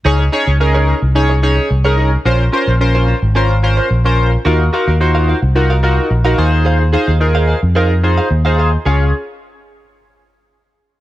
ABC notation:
X:1
M:4/4
L:1/16
Q:1/4=109
K:Db
V:1 name="Clean electric guitar"
[EAd] z [EAd] [EAd] z [EAd] [EAd] z2 [EAd] [EAd] z2 [EAd] [EAd] z | [DFc] z [DFc] [DFc] z [DFc] [DFc] z [DFc] z2 [DFc] z4 | [GBf] z [GBf] [GBf] z [GBf] [GBf] z2 [GBf] [GBf] z2 [GBf] [Acf] z | [Acf] z [Acf] [Acf] z [Acf] [Acf] z [Acf] z2 [Acf] z [Acf] [Acf] z |
[Adf] z12 z3 |]
V:2 name="Analog polysynth"
[DEAd] z [DEAd] z [DEAB]2 z2 [DEAd] z [DEAd]2 z [DEAB]2 z | [DFBc] z [DFBc] z [DFBc]2 z2 [DFBc] z [DFBc]2 z [DFBc]2 z | [EFGB] z [EFGB] z [EFGc]2 z2 [EFGB] z [EFGB]2 z [EFGB] [EFAc]2- | [EFAc] z [EFAc] z [EFAB]2 z2 [EFAB] z [EFAc]2 z [EFAc]2 z |
[DFAd]2 z12 z2 |]
V:3 name="Fingered electric bass" clef=bass
D,,2 z D,,4 C,,4- C,, C,,4 | B,,,2 z B,,,4 A,,,4- A,,, B,,,4 | E,,2 z E,,4 C,,4- C,, B,,,2 E,,2- | E,,3 E,,4 F,,4- F,, E,,4 |
D,,2 z12 z2 |]